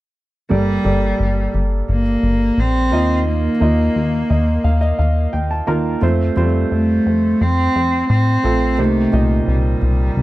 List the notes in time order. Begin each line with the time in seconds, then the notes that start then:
0.49 G1 G2 G3 A#3 G4 A4 D5
0.84 G1 A#3 G4 A4 D5
1.20 G1
1.54 G1
1.89 G1 A#3
2.23 G1
2.58 A#1 C4
2.92 D#2 D#3 A#3 D#4 F4 D#5
3.28 A#3
3.60 D#2 A#3 D#4 F4 D#5
3.96 D#2
4.30 D#2 D#5
4.64 D#2 F5
4.81 D#5
4.99 D#2 F5
5.33 D#2 G5
5.51 A5
5.67 D#2 A#3 D#4 F4 A#4 A#5
6.01 F2 A3 C4 F4 C5
6.36 F2 G3 C4 F4 C5
6.42 A3
6.72 F2 A3
7.06 F2
7.41 F2 C4
7.76 F2
8.10 A2 C4
8.43 A#1 A3 C4 F4 A4
8.78 C2 C3 A3 A#3 D#4 G4 C5
9.12 C2 A#2 D#4 G4 D#5
9.48 C2 G3
9.82 C2
10.17 C2